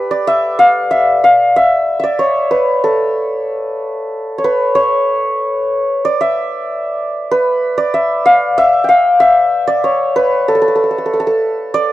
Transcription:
0, 0, Header, 1, 2, 480
1, 0, Start_track
1, 0, Tempo, 642398
1, 681, Time_signature, 3, 2, 24, 8
1, 4995, Tempo, 630915
1, 8982, End_track
2, 0, Start_track
2, 0, Title_t, "Santur"
2, 0, Program_c, 0, 15
2, 0, Note_on_c, 0, 67, 66
2, 0, Note_on_c, 0, 69, 68
2, 0, Note_on_c, 0, 71, 81
2, 0, Note_on_c, 0, 74, 71
2, 78, Note_off_c, 0, 74, 0
2, 81, Note_on_c, 0, 74, 75
2, 204, Note_on_c, 0, 76, 91
2, 439, Note_on_c, 0, 77, 88
2, 484, Note_off_c, 0, 76, 0
2, 678, Note_on_c, 0, 76, 79
2, 723, Note_off_c, 0, 77, 0
2, 839, Note_off_c, 0, 67, 0
2, 916, Note_off_c, 0, 69, 0
2, 925, Note_on_c, 0, 77, 77
2, 970, Note_off_c, 0, 76, 0
2, 1168, Note_on_c, 0, 76, 88
2, 1212, Note_off_c, 0, 77, 0
2, 1488, Note_off_c, 0, 76, 0
2, 1491, Note_on_c, 0, 76, 57
2, 1517, Note_off_c, 0, 74, 0
2, 1520, Note_on_c, 0, 74, 67
2, 1636, Note_on_c, 0, 73, 73
2, 1681, Note_off_c, 0, 74, 0
2, 1753, Note_off_c, 0, 71, 0
2, 1874, Note_on_c, 0, 71, 70
2, 2120, Note_on_c, 0, 69, 65
2, 3206, Note_off_c, 0, 76, 0
2, 3272, Note_off_c, 0, 73, 0
2, 3275, Note_on_c, 0, 73, 54
2, 3316, Note_off_c, 0, 71, 0
2, 3319, Note_on_c, 0, 71, 68
2, 3546, Note_off_c, 0, 73, 0
2, 3549, Note_on_c, 0, 73, 83
2, 4308, Note_off_c, 0, 69, 0
2, 4519, Note_on_c, 0, 74, 84
2, 4564, Note_off_c, 0, 73, 0
2, 4638, Note_on_c, 0, 76, 79
2, 5364, Note_off_c, 0, 71, 0
2, 5473, Note_on_c, 0, 71, 82
2, 5822, Note_off_c, 0, 74, 0
2, 5825, Note_on_c, 0, 74, 80
2, 5945, Note_off_c, 0, 76, 0
2, 5948, Note_on_c, 0, 76, 77
2, 6190, Note_on_c, 0, 77, 84
2, 6235, Note_off_c, 0, 76, 0
2, 6434, Note_on_c, 0, 76, 95
2, 6480, Note_off_c, 0, 77, 0
2, 6635, Note_on_c, 0, 79, 56
2, 6670, Note_on_c, 0, 77, 77
2, 6716, Note_off_c, 0, 76, 0
2, 6909, Note_on_c, 0, 76, 87
2, 6954, Note_off_c, 0, 77, 0
2, 7266, Note_off_c, 0, 74, 0
2, 7269, Note_on_c, 0, 74, 74
2, 7395, Note_on_c, 0, 73, 67
2, 7440, Note_off_c, 0, 74, 0
2, 7549, Note_off_c, 0, 71, 0
2, 7637, Note_on_c, 0, 71, 78
2, 7884, Note_on_c, 0, 69, 68
2, 7932, Note_off_c, 0, 69, 0
2, 7935, Note_on_c, 0, 69, 49
2, 7983, Note_off_c, 0, 69, 0
2, 7986, Note_on_c, 0, 69, 58
2, 8031, Note_off_c, 0, 69, 0
2, 8034, Note_on_c, 0, 69, 42
2, 8087, Note_off_c, 0, 69, 0
2, 8091, Note_on_c, 0, 69, 50
2, 8149, Note_off_c, 0, 69, 0
2, 8153, Note_on_c, 0, 69, 34
2, 8203, Note_off_c, 0, 69, 0
2, 8206, Note_on_c, 0, 69, 38
2, 8212, Note_off_c, 0, 79, 0
2, 8261, Note_off_c, 0, 69, 0
2, 8264, Note_on_c, 0, 69, 40
2, 8318, Note_off_c, 0, 69, 0
2, 8321, Note_on_c, 0, 69, 46
2, 8377, Note_off_c, 0, 69, 0
2, 8380, Note_on_c, 0, 69, 46
2, 8425, Note_off_c, 0, 69, 0
2, 8428, Note_on_c, 0, 69, 59
2, 8479, Note_off_c, 0, 69, 0
2, 8482, Note_on_c, 0, 69, 54
2, 8655, Note_off_c, 0, 76, 0
2, 8841, Note_on_c, 0, 74, 92
2, 8887, Note_off_c, 0, 73, 0
2, 8982, Note_off_c, 0, 69, 0
2, 8982, Note_off_c, 0, 71, 0
2, 8982, Note_off_c, 0, 74, 0
2, 8982, End_track
0, 0, End_of_file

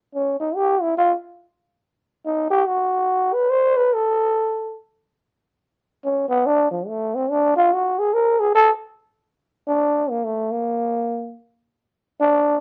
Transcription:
0, 0, Header, 1, 2, 480
1, 0, Start_track
1, 0, Tempo, 500000
1, 12101, End_track
2, 0, Start_track
2, 0, Title_t, "Trombone"
2, 0, Program_c, 0, 57
2, 141, Note_on_c, 0, 61, 82
2, 374, Note_off_c, 0, 61, 0
2, 386, Note_on_c, 0, 63, 89
2, 534, Note_on_c, 0, 67, 98
2, 549, Note_off_c, 0, 63, 0
2, 788, Note_on_c, 0, 64, 92
2, 803, Note_off_c, 0, 67, 0
2, 920, Note_off_c, 0, 64, 0
2, 936, Note_on_c, 0, 65, 101
2, 1090, Note_off_c, 0, 65, 0
2, 2169, Note_on_c, 0, 63, 98
2, 2398, Note_off_c, 0, 63, 0
2, 2403, Note_on_c, 0, 67, 114
2, 2563, Note_on_c, 0, 66, 96
2, 2578, Note_off_c, 0, 67, 0
2, 3204, Note_on_c, 0, 71, 99
2, 3218, Note_off_c, 0, 66, 0
2, 3362, Note_on_c, 0, 72, 106
2, 3377, Note_off_c, 0, 71, 0
2, 3617, Note_on_c, 0, 71, 98
2, 3631, Note_off_c, 0, 72, 0
2, 3788, Note_on_c, 0, 69, 97
2, 3802, Note_off_c, 0, 71, 0
2, 4573, Note_off_c, 0, 69, 0
2, 5805, Note_on_c, 0, 61, 88
2, 6031, Note_off_c, 0, 61, 0
2, 6037, Note_on_c, 0, 59, 104
2, 6206, Note_on_c, 0, 62, 102
2, 6220, Note_off_c, 0, 59, 0
2, 6437, Note_off_c, 0, 62, 0
2, 6443, Note_on_c, 0, 53, 72
2, 6600, Note_on_c, 0, 57, 84
2, 6614, Note_off_c, 0, 53, 0
2, 6864, Note_on_c, 0, 60, 87
2, 6878, Note_off_c, 0, 57, 0
2, 7014, Note_on_c, 0, 62, 96
2, 7028, Note_off_c, 0, 60, 0
2, 7259, Note_off_c, 0, 62, 0
2, 7264, Note_on_c, 0, 65, 110
2, 7424, Note_on_c, 0, 66, 92
2, 7439, Note_off_c, 0, 65, 0
2, 7671, Note_on_c, 0, 68, 91
2, 7686, Note_off_c, 0, 66, 0
2, 7812, Note_on_c, 0, 70, 97
2, 7827, Note_off_c, 0, 68, 0
2, 8064, Note_on_c, 0, 68, 98
2, 8078, Note_off_c, 0, 70, 0
2, 8195, Note_off_c, 0, 68, 0
2, 8208, Note_on_c, 0, 69, 120
2, 8363, Note_off_c, 0, 69, 0
2, 9288, Note_on_c, 0, 62, 97
2, 9696, Note_on_c, 0, 58, 82
2, 9710, Note_off_c, 0, 62, 0
2, 9835, Note_on_c, 0, 57, 79
2, 9849, Note_off_c, 0, 58, 0
2, 10095, Note_on_c, 0, 58, 81
2, 10110, Note_off_c, 0, 57, 0
2, 10898, Note_off_c, 0, 58, 0
2, 11717, Note_on_c, 0, 62, 100
2, 12087, Note_off_c, 0, 62, 0
2, 12101, End_track
0, 0, End_of_file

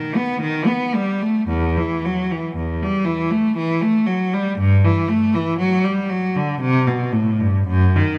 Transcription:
0, 0, Header, 1, 2, 480
1, 0, Start_track
1, 0, Key_signature, 1, "minor"
1, 0, Tempo, 1058201
1, 672, Time_signature, 3, 2, 24, 8
1, 1151, Tempo, 1020408
1, 3071, Tempo, 1063830
1, 3776, End_track
2, 0, Start_track
2, 0, Title_t, "Cello"
2, 0, Program_c, 0, 42
2, 0, Note_on_c, 0, 51, 64
2, 68, Note_on_c, 0, 59, 64
2, 72, Note_off_c, 0, 51, 0
2, 185, Note_on_c, 0, 51, 77
2, 187, Note_off_c, 0, 59, 0
2, 301, Note_on_c, 0, 59, 69
2, 303, Note_off_c, 0, 51, 0
2, 424, Note_off_c, 0, 59, 0
2, 429, Note_on_c, 0, 55, 69
2, 550, Note_off_c, 0, 55, 0
2, 552, Note_on_c, 0, 57, 60
2, 671, Note_on_c, 0, 40, 76
2, 674, Note_off_c, 0, 57, 0
2, 793, Note_off_c, 0, 40, 0
2, 804, Note_on_c, 0, 52, 62
2, 920, Note_off_c, 0, 52, 0
2, 932, Note_on_c, 0, 54, 64
2, 1042, Note_off_c, 0, 54, 0
2, 1047, Note_on_c, 0, 52, 57
2, 1157, Note_off_c, 0, 52, 0
2, 1161, Note_on_c, 0, 40, 63
2, 1274, Note_off_c, 0, 40, 0
2, 1285, Note_on_c, 0, 55, 65
2, 1391, Note_on_c, 0, 52, 65
2, 1397, Note_off_c, 0, 55, 0
2, 1510, Note_off_c, 0, 52, 0
2, 1513, Note_on_c, 0, 57, 69
2, 1630, Note_off_c, 0, 57, 0
2, 1635, Note_on_c, 0, 52, 74
2, 1748, Note_off_c, 0, 52, 0
2, 1751, Note_on_c, 0, 57, 72
2, 1868, Note_off_c, 0, 57, 0
2, 1868, Note_on_c, 0, 54, 63
2, 1986, Note_off_c, 0, 54, 0
2, 1995, Note_on_c, 0, 55, 66
2, 2110, Note_off_c, 0, 55, 0
2, 2112, Note_on_c, 0, 43, 90
2, 2227, Note_off_c, 0, 43, 0
2, 2236, Note_on_c, 0, 52, 74
2, 2349, Note_on_c, 0, 57, 75
2, 2352, Note_off_c, 0, 52, 0
2, 2470, Note_off_c, 0, 57, 0
2, 2472, Note_on_c, 0, 52, 67
2, 2586, Note_on_c, 0, 54, 78
2, 2591, Note_off_c, 0, 52, 0
2, 2705, Note_on_c, 0, 55, 65
2, 2706, Note_off_c, 0, 54, 0
2, 2825, Note_on_c, 0, 54, 70
2, 2828, Note_off_c, 0, 55, 0
2, 2947, Note_off_c, 0, 54, 0
2, 2947, Note_on_c, 0, 50, 67
2, 3063, Note_on_c, 0, 48, 91
2, 3068, Note_off_c, 0, 50, 0
2, 3180, Note_off_c, 0, 48, 0
2, 3181, Note_on_c, 0, 47, 73
2, 3296, Note_on_c, 0, 45, 69
2, 3302, Note_off_c, 0, 47, 0
2, 3421, Note_off_c, 0, 45, 0
2, 3422, Note_on_c, 0, 43, 67
2, 3544, Note_on_c, 0, 42, 85
2, 3547, Note_off_c, 0, 43, 0
2, 3666, Note_off_c, 0, 42, 0
2, 3675, Note_on_c, 0, 51, 75
2, 3776, Note_off_c, 0, 51, 0
2, 3776, End_track
0, 0, End_of_file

